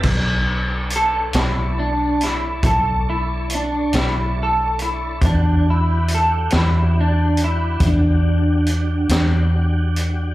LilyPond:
<<
  \new Staff \with { instrumentName = "Tonewheel organ" } { \time 12/8 \key b \minor \tempo 4. = 46 << { <b' c''>8 r1 r4. | r1. | } \\ { <d' a' cis''>1. | <d' fis' g'>1. | } >> }
  \new Staff \with { instrumentName = "Clean electric guitar" } { \time 12/8 \key b \minor r4 a'8 e'8 d'8 e'8 a'8 e'8 d'8 e'8 a'8 e'8 | d'8 e'8 a'8 e'8 d'8 e'8 d'2. | }
  \new Staff \with { instrumentName = "Fingered electric bass" } { \clef bass \time 12/8 \key b \minor b,,4. b,,4. b,,4. b,,4. | e,4. e,4. e,4. e,4. | }
  \new DrumStaff \with { instrumentName = "Drums" } \drummode { \time 12/8 <cymc bd>4 hh8 <hh sn>4 <hh sn>8 <hh bd>4 hh8 <hh sn>4 hh8 | <hh bd>4 hh8 <hh sn>4 hh8 <hh bd>4 hh8 <hh sn>4 hh8 | }
>>